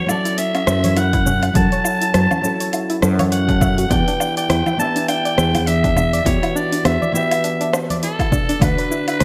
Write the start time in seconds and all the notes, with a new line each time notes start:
Already playing: C#5
0.06 F#3 C#4 E4 A4 D5 A5, low woodblock, shaker
0.25 E4, open hi-hat, shaker
0.38 C#4 E5, open hi-hat, shaker
0.55 C#4, open hi-hat, low woodblock, shaker
0.67 F#2 C#4, cross-stick, shaker
0.84 C#5, open hi-hat, high conga, shaker
0.97 E4 F#5, open hi-hat, low woodblock, shaker
1.13 E4, kick, open hi-hat, shaker
1.26 C#4, low conga, shaker
1.43 C#4, open hi-hat, low woodblock, shaker
1.53 F#2 F#3 C#4 E4 A4 A5, kick, open hi-hat, high conga, low conga, shaker
1.58 F#5
1.72 C#5, open hi-hat, shaker
1.85 E4, low woodblock, shaker
2.02 E4, open hi-hat, shaker
2.14 F#2 C#4, cross-stick, open hi-hat, shaker
2.31 C#4, high conga, low woodblock, shaker
2.42 F#3 C#4 E4 A4 A5, shaker
2.60 C#5, open hi-hat, shaker
2.73 E4, open hi-hat, low woodblock, shaker
2.90 E4, open hi-hat, shaker
3.02 F#2 A4, cross-stick, shaker
3.19 C#5, open hi-hat, high conga, low woodblock, shaker
3.32 C#5 F#5, open hi-hat, shaker
3.48 F#3 C#4 E4 A4 F#5, kick, open hi-hat, shaker
3.61 E5, kick, low conga, low woodblock, shaker
3.78 F#4, open hi-hat, shaker
3.88 E2 E3 B3 D4 E4 G4 G5, kick, open hi-hat, high conga, low conga, shaker
3.93 D5
4.08 D4, open hi-hat, shaker
4.20 D4, low woodblock, shaker
4.37 D5 G5, open hi-hat, shaker
4.49 E2 E4, cross-stick, open hi-hat, shaker
4.66 E4, high conga, low woodblock, shaker
4.77 E3 B3 D4 E4 G4 A5, shaker
4.81 E5
4.96 D4, open hi-hat, shaker
5.08 D4 G5, open hi-hat, low woodblock, shaker
5.25 D5, open hi-hat, shaker
5.38 E2 E4, cross-stick, shaker
5.54 E4, open hi-hat, high conga, low woodblock, shaker
5.67 D4 E5, open hi-hat, shaker
5.84 D4, kick, open hi-hat, shaker
5.96 D4, low conga, low woodblock, shaker
6.13 D5, open hi-hat, shaker
6.24 E2 E3 B3 E4 F#4 G4 C#5, kick, open hi-hat, high conga, low conga, shaker
6.28 D5
6.43 E4, open hi-hat, low woodblock, shaker
6.55 D4 D5, shaker
6.72 D4, open hi-hat, shaker
6.85 E2 D4 E5, cross-stick, open hi-hat, low woodblock, shaker
7.02 D5, high conga, shaker
7.12 E3 B3 E4 F#4 G4 E5, shaker
7.16 E5
7.31 E4, open hi-hat, low woodblock, shaker
7.44 D4, open hi-hat, shaker
7.61 D4, open hi-hat, shaker
7.73 D4, cross-stick, low woodblock, shaker
7.90 D5, open hi-hat, high conga, shaker
8.03 E4 A4, open hi-hat, shaker
8.19 E4, kick, open hi-hat, low woodblock, shaker
8.32 D4, kick, low conga, shaker
8.49 D4, open hi-hat, shaker
8.59 D2 D3 D4 F#4 B4, kick, open hi-hat, high conga, low conga, low woodblock, shaker
8.63 E5
8.78 B4, open hi-hat, shaker
8.91 E4, shaker
9.08 E4 B4, open hi-hat, low woodblock, shaker
9.20 D2 D4, cross-stick, open hi-hat, shaker